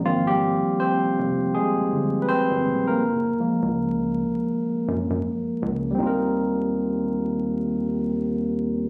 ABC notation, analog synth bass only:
X:1
M:4/4
L:1/16
Q:"Swing 16ths" 1/4=81
K:Eb
V:1 name="Analog synth bass" clef=bass
A,,,3 z2 F,,, F,,,2 z G,,, G,,,2 z A,,, E,,,2 | _G,,,2 z _D,,4 z3 _G,, G,, z2 D,,2 | E,,16 |]